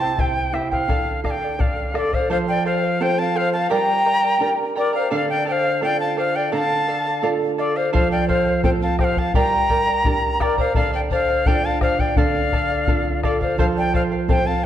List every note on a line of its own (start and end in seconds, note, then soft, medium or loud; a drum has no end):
0.00 0.85 C3 medium
0.00 0.17 E4 medium
0.00 0.18 E4 soft
0.00 0.18 C5 soft
0.00 0.18 G5 soft
0.00 0.21 A5 medium
0.18 0.53 E4 medium
0.18 0.52 G4 medium
0.18 0.54 C5 medium
0.18 0.52 E5 medium
0.18 0.55 G5 medium
0.18 0.54 G5 medium
0.18 bombo low medium
0.53 0.87 E4 medium
0.53 0.72 E4 medium
0.53 0.71 C5 medium
0.53 0.71 E5 medium
0.53 0.71 E5 soft
0.53 0.70 G5 medium
0.53 bombo rim soft
0.71 0.89 E4 soft
0.71 0.89 C5 soft
0.71 1.20 F5 medium
0.71 0.89 G5 soft
0.71 bombo low soft
0.88 2.25 D3 medium
0.88 1.23 A4 medium
0.88 1.24 D5 medium
0.88 1.24 F5 medium
0.88 bombo low medium
1.24 1.58 A4 medium
1.24 1.42 A4 medium
1.24 1.42 D5 medium
1.24 1.41 F5 medium
1.24 1.31 A5 medium
1.24 bombo rim soft
1.24 bombo low soft
1.30 1.62 G5 medium
1.42 1.59 D5 soft
1.42 1.59 F5 soft
1.59 1.93 A4 medium
1.59 1.93 D5 medium
1.59 1.94 D5 medium
1.59 1.95 F5 medium
1.59 1.94 F5 medium
1.59 bombo low medium
1.94 2.28 A4 medium
1.94 2.12 A4 soft
1.94 2.15 A4 medium
1.94 2.12 D5 medium
1.94 2.16 D5 medium
1.94 2.11 F5 medium
1.94 bombo rim medium
2.12 2.30 C5 medium
2.12 2.30 D5 soft
2.12 2.30 F5 soft
2.12 2.31 F5 medium
2.12 bombo low soft
2.30 3.67 F3 medium
2.30 2.64 A4 medium
2.30 2.65 C5 medium
2.30 2.38 C5 medium
2.30 2.65 F5 medium
2.30 2.37 F5 medium
2.48 2.65 D5 medium
2.48 2.64 G5 medium
2.65 2.83 A4 medium
2.65 2.83 C5 medium
2.65 3.02 C5 medium
2.65 3.03 F5 medium
2.65 2.82 F5 medium
2.83 3.00 C5 soft
2.83 3.01 F5 medium
3.00 3.69 C4 soft
3.00 3.69 F4 soft
3.00 3.34 A4 medium
3.00 3.69 A4 medium
3.00 3.34 C5 medium
3.00 3.22 C5 medium
3.00 3.35 F5 medium
3.00 3.20 G5 loud
3.18 3.41 F5 medium
3.18 3.38 A5 medium
3.35 3.53 A4 medium
3.35 3.53 C5 medium
3.35 3.52 F5 medium
3.35 3.52 F5 loud
3.39 3.55 C5 medium
3.53 3.69 C5 soft
3.53 3.70 F5 soft
3.53 3.71 F5 medium
3.53 3.69 A5 medium
3.70 4.40 G3 medium
3.70 4.06 G4 medium
3.70 4.05 A#4 medium
3.70 4.05 D5 medium
3.70 4.04 G5 medium
3.70 4.56 G5 loud
3.70 4.50 A#5 loud
3.70 4.05 A#5 medium
4.05 4.23 A#4 medium
4.05 4.22 D5 medium
4.05 4.23 G5 medium
4.05 4.21 A#5 medium
4.22 4.40 A#4 soft
4.22 4.40 D5 soft
4.22 4.40 A#5 soft
4.40 5.09 D4 soft
4.40 5.10 G4 soft
4.40 4.75 A#4 medium
4.40 5.10 A#4 medium
4.40 4.75 D5 medium
4.40 4.74 G5 medium
4.40 4.76 A#5 medium
4.76 4.93 A#4 medium
4.76 4.94 A#4 medium
4.76 4.92 D5 medium
4.76 4.94 D5 medium
4.76 4.94 G5 medium
4.76 4.92 A#5 medium
4.93 5.10 A#4 soft
4.93 5.12 C5 medium
4.93 5.10 D5 soft
4.93 5.11 F5 medium
4.93 5.11 A#5 medium
5.11 6.49 D3 medium
5.11 5.44 A4 medium
5.11 5.45 D5 medium
5.11 5.29 D5 medium
5.11 5.46 F5 medium
5.11 5.29 F5 medium
5.29 5.47 D5 medium
5.29 5.46 G5 medium
5.45 5.64 A4 medium
5.45 5.64 D5 medium
5.45 5.63 F5 medium
5.45 5.53 G5 medium
5.49 5.81 C5 medium
5.49 5.80 F5 medium
5.64 5.81 D5 soft
5.64 5.82 F5 medium
5.81 6.50 D4 medium
5.81 6.51 F4 soft
5.81 6.15 A4 medium
5.81 6.51 A4 medium
5.81 6.16 D5 medium
5.81 6.00 D5 medium
5.81 6.17 F5 medium
5.81 5.99 G5 loud
6.00 6.17 F5 medium
6.00 6.16 A5 medium
6.16 6.35 A4 medium
6.16 6.38 C5 medium
6.16 6.35 D5 medium
6.16 6.33 F5 medium
6.16 6.37 F5 medium
6.35 6.51 D5 soft
6.35 6.53 D5 medium
6.35 6.52 F5 soft
6.35 6.53 G5 medium
6.52 7.90 D3 medium
6.52 6.87 A4 medium
6.52 6.87 D5 medium
6.52 6.88 F5 medium
6.52 7.28 F5 medium
6.52 6.58 A#5 medium
6.57 7.28 A5 loud
6.88 7.06 A4 medium
6.88 7.05 D5 medium
6.88 7.03 F5 medium
7.04 7.22 D5 soft
7.04 7.22 F5 medium
7.22 7.91 D4 medium
7.22 7.92 F4 soft
7.22 7.57 A4 medium
7.22 7.92 A4 medium
7.22 7.57 D5 medium
7.22 7.58 F5 medium
7.58 7.76 A4 medium
7.58 7.78 A4 medium
7.58 7.76 D5 medium
7.58 7.78 D5 medium
7.58 7.75 F5 medium
7.76 7.93 C5 medium
7.76 7.93 D5 soft
7.76 7.92 F5 medium
7.76 7.93 F5 medium
7.93 9.31 F3 medium
7.93 8.27 A4 medium
7.93 8.28 C5 medium
7.93 8.10 C5 medium
7.93 8.29 F5 medium
7.93 8.10 F5 medium
7.93 bombo low medium
8.11 8.28 D5 medium
8.11 8.27 G5 medium
8.28 8.46 A4 medium
8.28 8.62 C5 medium
8.28 8.46 C5 medium
8.28 8.61 F5 medium
8.28 8.45 F5 medium
8.28 bombo low medium
8.46 8.63 C5 soft
8.46 8.63 F5 soft
8.63 9.32 C4 medium
8.63 9.33 F4 soft
8.63 8.98 A4 medium
8.63 9.33 A4 medium
8.63 8.99 C5 medium
8.63 8.71 C5 medium
8.63 9.00 F5 medium
8.63 8.70 G5 medium
8.63 bombo low medium
8.81 8.99 F5 medium
8.81 8.98 A5 medium
8.99 9.17 A4 medium
8.99 9.17 C5 medium
8.99 9.20 C5 medium
8.99 9.16 F5 medium
8.99 9.05 G5 medium
8.99 bombo rim soft
8.99 bombo low medium
9.04 9.20 F5 medium
9.17 9.35 C5 soft
9.17 9.35 F5 soft
9.17 9.35 F5 medium
9.17 9.35 A5 medium
9.17 bombo low medium
9.34 10.05 G3 medium
9.34 9.70 G4 medium
9.34 9.69 A#4 medium
9.34 9.69 D5 medium
9.34 9.68 G5 medium
9.34 10.15 G5 loud
9.34 10.43 A#5 loud
9.34 9.70 A#5 medium
9.34 bombo low medium
9.69 9.87 A#4 medium
9.69 9.87 D5 medium
9.69 9.87 G5 medium
9.69 9.86 A#5 medium
9.69 bombo low medium
9.87 10.04 A#4 soft
9.87 10.04 D5 soft
9.87 10.05 A#5 soft
10.04 10.74 D4 medium
10.04 10.74 G4 soft
10.04 10.40 A#4 medium
10.04 10.75 A#4 medium
10.04 10.40 D5 medium
10.04 10.39 G5 medium
10.04 10.40 A#5 medium
10.04 bombo low medium
10.40 10.58 A#4 medium
10.40 10.58 D5 medium
10.40 10.59 D5 medium
10.40 10.58 G5 medium
10.40 10.57 A#5 medium
10.40 bombo rim soft
10.40 bombo low medium
10.58 10.75 A#4 soft
10.58 10.75 C5 medium
10.58 10.75 D5 soft
10.58 10.75 F5 medium
10.58 10.76 A#5 medium
10.58 bombo low medium
10.75 12.13 D3 medium
10.75 11.10 A4 medium
10.75 11.11 D5 medium
10.75 10.92 D5 medium
10.75 11.12 F5 medium
10.75 10.93 F5 medium
10.75 bombo low medium
10.93 10.99 D5 medium
10.93 11.01 G5 medium
11.11 11.29 A4 medium
11.11 11.48 C5 medium
11.11 11.29 D5 medium
11.11 11.48 F5 medium
11.11 11.27 F5 medium
11.11 bombo low medium
11.28 11.46 D5 soft
11.28 11.46 F5 medium
11.46 12.15 D4 soft
11.46 12.15 F4 soft
11.46 11.80 A4 medium
11.46 12.16 A4 medium
11.46 11.66 D5 medium
11.46 11.81 D5 medium
11.46 11.82 F5 medium
11.46 11.67 G5 medium
11.46 bombo low medium
11.65 11.81 F5 medium
11.65 11.82 A5 medium
11.81 11.99 A4 medium
11.81 12.01 C5 medium
11.81 12.00 D5 medium
11.81 12.01 F5 medium
11.81 11.98 F5 medium
11.81 bombo rim medium
11.81 bombo low medium
11.99 12.17 D5 medium
11.99 12.17 D5 soft
11.99 12.17 F5 soft
11.99 12.19 G5 medium
11.99 bombo low medium
12.16 13.54 D3 medium
12.16 12.52 A4 medium
12.16 13.23 D5 medium
12.16 12.52 D5 medium
12.16 13.23 F5 medium
12.16 12.53 F5 medium
12.16 bombo low medium
12.53 12.70 A4 medium
12.53 12.70 D5 medium
12.53 12.68 F5 medium
12.53 bombo low medium
12.70 12.88 D5 soft
12.70 12.87 F5 soft
12.87 13.56 D4 medium
12.87 13.56 F4 soft
12.87 13.56 A4 medium
12.87 13.22 A4 medium
12.87 13.23 D5 medium
12.87 13.24 F5 medium
12.87 bombo low medium
13.23 13.41 A4 medium
13.23 13.40 A4 medium
13.23 13.40 D5 medium
13.23 13.41 D5 medium
13.23 13.39 F5 medium
13.23 bombo rim soft
13.23 bombo low medium
13.41 13.58 C5 medium
13.41 13.59 D5 soft
13.41 13.57 F5 medium
13.41 13.58 F5 medium
13.41 bombo low soft
13.58 14.66 F3 medium
13.58 13.92 A4 medium
13.58 13.65 C5 medium
13.58 13.93 C5 medium
13.58 13.94 F5 medium
13.58 13.66 F5 medium
13.58 bombo low medium
13.76 13.92 D5 medium
13.76 13.93 G5 medium
13.94 14.11 A4 medium
13.94 14.02 C5 medium
13.94 14.11 C5 medium
13.94 14.10 F5 medium
13.94 14.03 F5 medium
13.94 bombo low soft
14.12 14.28 C5 soft
14.12 14.29 F5 soft
14.28 14.66 C4 medium
14.28 14.66 F4 soft
14.28 14.66 A4 medium
14.28 14.63 A4 medium
14.28 14.48 C5 medium
14.28 14.63 C5 medium
14.28 14.64 F5 medium
14.28 14.48 G5 medium
14.28 bombo low medium
14.46 14.66 F5 medium
14.46 14.65 A5 medium